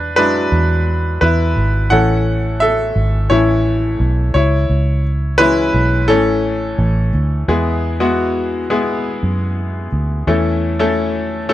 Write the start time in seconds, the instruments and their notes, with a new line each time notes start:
Already playing: fingered electric bass E2, grand piano D4 B4
0.16 fingered electric bass F#2, grand piano F#3 G#3 D4 E4 B4
0.52 fingered electric bass E2
1.21 fingered electric bass E2, grand piano E4 B4
1.57 fingered electric bass G#1
1.90 fingered electric bass A1, grand piano E3 A3 C#4 A4 F#5
2.60 grand piano A4 E5
2.96 fingered electric bass G#1
3.30 fingered electric bass A1, grand piano E3 A3 C#4 E4 C#5
4.00 fingered electric bass B1
4.34 fingered electric bass C#2, grand piano E4 C#5
4.70 fingered electric bass C#2
5.38 grand piano E3 G#3 C#4 E4 B4
5.74 fingered electric bass B1
6.08 fingered electric bass A1, grand piano E3 A3 C#4 A4
6.79 fingered electric bass A1
7.14 fingered electric bass D2
7.48 fingered electric bass E2, grand piano E3 G#3 B3 E4 G#4
8.00 grand piano G#3 B3 E4 F#4
8.70 grand piano G#3 B3 E4 G#4
9.23 fingered electric bass F#2
9.92 fingered electric bass D2
10.27 fingered electric bass E2, grand piano E3 A3 C#4 E4 A4
10.79 grand piano A3 C#4 E4 A4
11.49 grand piano A3 C#4 E4 A4